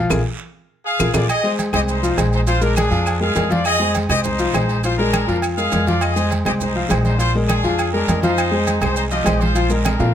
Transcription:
0.10 upright bass A#1, upright piano F4 G#4 A#4, high conga, high timbale, long guiro, claves, maracas
0.85 trumpet section G#4 F5
0.99 upright bass A#1, upright piano F4 G#4 A#4, high conga, high timbale, long guiro, claves, maracas
1.14 upright bass A#1, upright piano F4 G#4 A#4, trumpet section F4 D5, high conga, high timbale, long guiro, claves, maracas
1.29 trumpet section G#4 D#5, high conga, low agogo, long guiro, claves, maracas
1.44 upright piano G#3 G#4 C5, high conga
1.58 high conga, low timbale, low agogo, short guiro, maracas
1.73 upright bass C2, upright piano G#3 G#4 C5, trumpet section G4 D#5, low conga, low agogo, short guiro, claves, maracas
1.88 trumpet section D#4 C5, high conga, long guiro, maracas
2.03 upright piano F3 F4 F5, high conga, maracas
2.17 upright bass A#1, upright piano G#3 G#4 C5, high conga, low timbale, low agogo, short guiro, claves, maracas
2.33 trumpet section D#4 C5, short guiro, maracas
2.47 upright piano F3 F4 F5, trumpet section F4 C5, low agogo, long guiro, maracas
2.61 upright piano G#3 G#4 A#4, trumpet section D4 A#4, high conga, maracas
2.76 trumpet section D4 G#4, high conga, low timbale, low agogo, short guiro, claves, maracas
2.91 upright bass F2, upright piano F3 F4 F5, short guiro, maracas
3.06 high conga, low agogo, long guiro, claves, maracas
3.21 upright piano G#3 G#4 A#4, trumpet section G#4 F5, high conga
3.35 upright bass F2, upright piano G#3 G#4 A#4, high conga, low timbale, low agogo, short guiro, maracas
3.50 upright piano F3 F4 F5, trumpet section F4 D5, high conga, short guiro, maracas
3.65 trumpet section G#4 D#5, low agogo, long guiro, claves, maracas
3.80 upright piano G#3 G#4 C5, high conga
3.94 high conga, low timbale, low agogo, short guiro, maracas
4.09 upright bass C2, upright piano G#3 G#4 C5, trumpet section G4 D#5, low conga, low agogo, short guiro, claves, maracas
4.24 trumpet section D#4 C5, high conga, low conga, long guiro, maracas
4.39 upright piano F3 F4 F5, high conga, maracas
4.53 upright bass A#1, upright piano G#3 G#4 C5, high conga, low timbale, low agogo, short guiro, claves, maracas
4.69 short guiro, maracas
4.83 upright piano F3 F4 F5, trumpet section F4 C5, low agogo, long guiro, maracas
4.98 upright piano G#3 G#4 A#4, trumpet section D4 A#4, high conga
5.13 high conga, low timbale, low agogo, short guiro, claves, maracas
5.27 upright bass F2, upright piano F3 F4 F5, short guiro, maracas
5.42 high conga, low agogo, long guiro, claves, maracas
5.57 upright piano G#3 G#4 A#4, trumpet section G#4 F5, high conga, maracas
5.72 upright bass F2, upright piano G#3 G#4 A#4, high conga, low timbale, low agogo, short guiro, maracas
5.87 upright piano F3 F4 F5, trumpet section F4 D5, high conga, short guiro, maracas
6.01 trumpet section G#4 D#5, low agogo, long guiro, claves, maracas
6.16 upright piano G#3 G#4 C5, high conga, maracas
6.30 high conga, low timbale, low agogo, short guiro, maracas
6.45 upright bass C2, upright piano G#3 G#4 C5, trumpet section G4 D#5, low conga, low agogo, short guiro, claves, maracas
6.60 trumpet section D#4 C5, high conga, low conga, long guiro, maracas
6.75 upright piano F3 F4 F5, high conga
6.89 upright bass A#1, upright piano G#3 G#4 C5, high conga, low timbale, low agogo, short guiro, claves, maracas
7.05 trumpet section D#4 C5, high conga, short guiro, maracas
7.18 upright piano F3 F4 F5, trumpet section F4 C5, high conga, low agogo, long guiro, maracas
7.35 upright piano G#3 G#4 A#4, high conga
7.48 trumpet section D4 G#4, high conga, low timbale, low agogo, short guiro, claves, maracas
7.64 upright bass F2, upright piano F3 F4 F5, short guiro, maracas
7.78 high conga, low agogo, long guiro, claves, maracas
7.93 upright piano G#3 G#4 A#4, trumpet section D4 A#4, high conga
8.07 upright bass F2, upright piano G#3 G#4 A#4, high conga, low timbale, low agogo, short guiro, maracas
8.22 upright piano F3 F4 F5, trumpet section D#4 C5, high conga, short guiro, maracas
8.37 high conga, low agogo, long guiro, claves, maracas
8.52 upright piano G#3 G#4 C5, high conga
8.66 high conga, low timbale, low agogo, short guiro, maracas
8.81 upright bass C2, upright piano G#3 G#4 C5, trumpet section D#4 C5, low conga, low agogo, short guiro, claves, maracas
8.96 trumpet section D#4 C5, high conga, long guiro, maracas
9.11 upright piano F3 F4 F5, trumpet section G4 D#5, high conga, maracas
9.24 upright bass A#1, upright piano G#3 G#4 C5, high conga, low timbale, low agogo, short guiro, claves, maracas
9.41 trumpet section F4 C5, high conga, short guiro, maracas
9.55 upright piano F3 F4 F5, high conga, low agogo, long guiro, maracas
9.69 upright piano G#3 G#4 A#4, trumpet section D4 A#4, high conga, maracas
9.85 high conga, high timbale, low agogo, short guiro, claves, maracas
9.99 upright bass A#2, upright piano F3 F4 F5, high timbale, short guiro, maracas

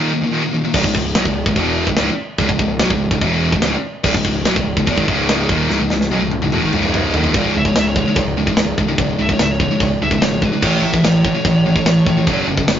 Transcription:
Already playing: distorted electric guitar D#2 A#2 D#3
0.13 distorted electric guitar D#2 A#2
0.24 distorted electric guitar D#2 A#2
0.33 distorted electric guitar D#2 A#2 D#3
0.45 distorted electric guitar D#2 A#2
0.54 distorted electric guitar D#2 A#2
0.65 distorted electric guitar D#2 A#2
0.74 picked electric bass C#1, distorted electric guitar C#2 G#2, kick, crash, china
0.84 picked electric bass C#1, distorted electric guitar C#2 G#2, kick
0.95 picked electric bass C#1, distorted electric guitar C#2 G#2, kick
1.15 picked electric bass B1, distorted electric guitar B2 F#3, snare, china
1.25 picked electric bass C#1, distorted electric guitar C#2 G#2, kick
1.46 picked electric bass C#1, distorted electric guitar C#2 G#2, kick
1.56 picked electric bass E1, distorted electric guitar E2 B2 E3, kick, china
1.87 picked electric bass C#1, distorted electric guitar C#2 G#2, kick
1.97 picked electric bass C#1, distorted electric guitar C#2 G#2, snare, china
2.38 picked electric bass C#1, distorted electric guitar C#2 G#2, kick, china
2.49 picked electric bass C#1, distorted electric guitar C#2 G#2, kick
2.59 picked electric bass C#1, distorted electric guitar C#2 G#2, kick
2.79 picked electric bass B1, distorted electric guitar B2 F#3, snare, china
2.90 picked electric bass C#1, distorted electric guitar C#2 G#2, kick
3.11 picked electric bass C#1, distorted electric guitar C#2 G#2, kick
3.21 picked electric bass E1, distorted electric guitar E2 B2 E3, kick, china
3.52 picked electric bass C#1, distorted electric guitar C#2 G#2, kick
3.62 picked electric bass C#1, distorted electric guitar C#2 G#2, snare, china
4.04 picked electric bass C#1, distorted electric guitar C#2 G#2, kick, crash, china
4.14 picked electric bass C#1, distorted electric guitar C#2 G#2, kick
4.25 picked electric bass C#1, distorted electric guitar C#2 G#2, kick
4.45 picked electric bass B1, distorted electric guitar B2 F#3, snare, china
4.56 picked electric bass C#1, distorted electric guitar C#2 G#2, kick
4.77 picked electric bass C#1, distorted electric guitar C#2 G#2, kick
4.87 picked electric bass E1, distorted electric guitar E2 B2, kick, china
4.96 picked electric bass G#1, distorted electric guitar G#2 D#3, kick
5.08 picked electric bass C#1, distorted electric guitar C#2 G#2 C#3, kick
5.29 snare, china
5.49 picked electric bass D#1, distorted electric guitar D#2 A#2 D#3, kick
5.69 picked electric bass C#1, distorted electric guitar C#2 G#2, snare
5.80 picked electric bass C#1, distorted electric guitar C#2 G#2
5.90 picked electric bass C#1, distorted electric guitar C#2 G#2, snare
6.01 snare
6.11 picked electric bass B1, distorted electric guitar B2 F#3, high tom
6.21 picked electric bass C#1, distorted electric guitar C#2 G#2
6.31 high tom
6.42 picked electric bass C#1, distorted electric guitar C#2 G#2, mid tom
6.52 picked electric bass E1, distorted electric guitar E2 B2, mid tom
6.63 picked electric bass G#1, distorted electric guitar G#2 D#3
6.73 picked electric bass C#1, distorted electric guitar C#2 G#2 C#3, mid tom
6.83 mid tom
6.94 mid tom
7.13 picked electric bass D#1, distorted electric guitar D#2 A#2 D#3, floor tom
7.24 floor tom
7.34 picked electric bass C#1, distorted electric guitar C#2 G#2 C#3, kick, china
7.54 picked electric bass C#1, distorted electric guitar C#2 G#2, lead electric guitar E5
7.65 distorted electric guitar C#2 G#2, lead electric guitar C#5, kick
7.75 picked electric bass C#1, distorted electric guitar C#2 G#2, lead electric guitar E5, snare, china
7.88 lead electric guitar C#5
7.96 distorted electric guitar C#2 G#2, lead electric guitar C#5, kick
8.08 distorted electric guitar C#2 G#2
8.16 picked electric bass C#1, distorted electric guitar C#2 G#2, kick, china
8.38 distorted electric guitar C#2 G#2
8.47 distorted electric guitar C#2 G#2, kick
8.57 picked electric bass C#1, distorted electric guitar C#2 G#2, snare, china
8.78 picked electric bass C#1, distorted electric guitar C#2 G#2, kick
8.88 distorted electric guitar C#2 G#2
8.98 picked electric bass C#1, distorted electric guitar C#2 G#2, kick, china
9.19 picked electric bass C#1, distorted electric guitar C#2 G#2, lead electric guitar E5
9.29 distorted electric guitar C#2 G#2, lead electric guitar C#5, kick
9.39 picked electric bass C#1, distorted electric guitar C#2 G#2, lead electric guitar E5, snare, china
9.51 lead electric guitar C#5
9.60 distorted electric guitar C#2 G#2, lead electric guitar C#5, kick
9.71 distorted electric guitar C#2 G#2
9.80 picked electric bass C#1, distorted electric guitar C#2 G#2, kick, china
10.01 picked electric bass C#1, distorted electric guitar C#2 G#2, lead electric guitar E5
10.11 distorted electric guitar C#2 G#2, kick
10.22 picked electric bass G#1, distorted electric guitar C#2 G#2, lead electric guitar C#5, snare, china
10.42 distorted electric guitar C#2 G#2, lead electric guitar B4, kick
10.52 distorted electric guitar C#2 G#2
10.62 picked electric bass A1, distorted electric guitar A2 E3 A3, lead electric guitar C#5, kick, china, crash
10.82 picked electric bass A1, distorted electric guitar A2 E3, lead electric guitar E5
10.93 distorted electric guitar A2 E3, kick
11.04 picked electric bass A1, distorted electric guitar A2 E3, lead electric guitar C#5, snare, china
11.25 distorted electric guitar A2 E3, kick
11.35 distorted electric guitar A2 E3
11.45 picked electric bass A1, distorted electric guitar A2 E3, kick, china
11.66 distorted electric guitar A2 E3
11.76 distorted electric guitar A2 E3, kick
11.85 picked electric bass A1, distorted electric guitar A2 E3, snare, china
12.06 picked electric bass A1, distorted electric guitar A2 E3, kick
12.17 distorted electric guitar A2 E3
12.27 picked electric bass F#1, distorted electric guitar F#2 C#3 F#3, kick, china
12.47 picked electric bass F#1, distorted electric guitar F#2 C#3
12.57 distorted electric guitar F#2 C#3, kick
12.68 picked electric bass F#1, distorted electric guitar F#2 C#3, snare, china

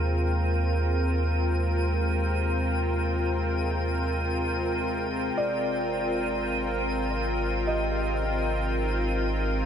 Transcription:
Already playing: sub bass D#2, synth drone C3 G#3, analog synth pad C4 F4 A#4 G5, synth texture D#7
5.36 sub bass G#1, felt piano D5
7.67 synth keys G4, felt piano D#5
8.25 synth keys C4
8.83 synth keys D#4

